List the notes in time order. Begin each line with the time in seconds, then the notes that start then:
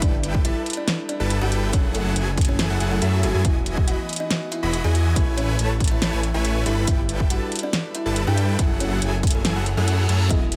Already playing: G3 D4 E4 A4 B4
0.02 G1 G3 D4 E4 A4 B4 D5 G5, kick, closed hi-hat
0.23 closed hi-hat
0.35 kick
0.44 G1 G3 E4 A4 B4 E5 A5, closed hi-hat
0.66 closed hi-hat
0.70 closed hi-hat
0.73 D4 D5, closed hi-hat
0.88 snare, closed hi-hat
1.09 D4 D5, closed hi-hat
1.20 G1 G3 E4 A4 B4 A5
1.30 closed hi-hat
1.41 G1 G3 E4 F#4 A4 B4 F#5 G5
1.52 closed hi-hat
1.73 F#1 F#3 A3 C#4 E4 C#5 G#5, kick, closed hi-hat
1.94 A3 A4, closed hi-hat
2.16 F#1 F#3 E4 G#4 A4 G#5, closed hi-hat
2.38 kick, closed hi-hat
2.41 closed hi-hat
2.45 C#4, closed hi-hat
2.49 C#5
2.59 F#1 F#3 E4 G#4 A4 G#5, snare, closed hi-hat
2.70 F#1 F#3 E4 G#4 A4 F#5
2.80 F#1 F#3 E4 G#4 A4 F#5, closed hi-hat
2.91 A3 A4
3.02 F#2 F#3 E4 G#4 A4 E5, closed hi-hat
3.23 F#1 F#3 E4 F#4 G#4 A4 G#5, closed hi-hat
3.34 F#2 F#3 E4 G#4 A4 G#5
3.45 E1 E3 B3 E4 F#4 D#5 E5, kick, closed hi-hat
3.66 closed hi-hat
3.77 kick
3.87 E1 E3 E4 F#4 D#5 F#5 B5, closed hi-hat
4.09 closed hi-hat
4.13 closed hi-hat
4.16 D#4 D#5, closed hi-hat
4.31 snare, closed hi-hat
4.52 E4 E5, closed hi-hat
4.63 E1 E3 E4 F#4 D#5 B5
4.73 closed hi-hat
4.84 E2 E3 E4 F#4 G#4 D#5 G#5
4.95 closed hi-hat
5.16 A1 A3 C#4 E4 B4 C#5 E5 G#5, kick, closed hi-hat
5.37 C#4 C#5, closed hi-hat
5.59 A1 A3 E4 B4 C#5 A5, closed hi-hat
5.80 kick, closed hi-hat
5.84 closed hi-hat
5.88 E4 E5, closed hi-hat
6.01 A1 A3 E4 B4 C#5 A5, snare, closed hi-hat
6.13 A1 A3 E4 B4 C#5 G#5
6.23 closed hi-hat
6.34 A1 A3 E4 B4 C#5 E5 G#5
6.45 closed hi-hat
6.66 G1 G3 D4 E4 A4 B4 E5 B5, closed hi-hat
6.87 G1 G3 E4 A4 B4 E5 G5, kick, closed hi-hat
7.09 closed hi-hat
7.20 kick
7.30 G1 G3 E4 F#4 A4 B4 F#5 A5, closed hi-hat
7.52 closed hi-hat
7.56 closed hi-hat
7.59 closed hi-hat
7.63 D4 D5
7.73 snare, closed hi-hat
7.95 E4 E5, closed hi-hat
8.06 G1 G3 E4 A4 B4 A5
8.16 closed hi-hat
8.27 G2 G3 E4 G4 A4 B4 G5
8.37 closed hi-hat
8.59 F#1 F#3 A3 C#4 E4 G#4 A4 E5 F#5 G#5, kick, closed hi-hat
8.80 C#4 C#5, closed hi-hat
9.01 F#1 F#3 E4 G#4 A4 G#5, closed hi-hat
9.23 kick, closed hi-hat
9.27 closed hi-hat
9.31 closed hi-hat
9.35 A3 A4
9.44 F#1 F#3 E4 G#4 A4 G#5, snare, closed hi-hat, reverse cymbal
9.56 F#1 F#3 E4 G#4 A4 F#5
9.66 closed hi-hat
9.77 F#2 F#3 A3 E4 G#4 A4 F#5
9.88 closed hi-hat
10.09 F#2 F#3 A3 E4 G#4 A4 A5, closed hi-hat
10.28 E1 E3 F#3 B3 E4 F#4 G#4 D#5 E5, kick, closed hi-hat
10.52 closed hi-hat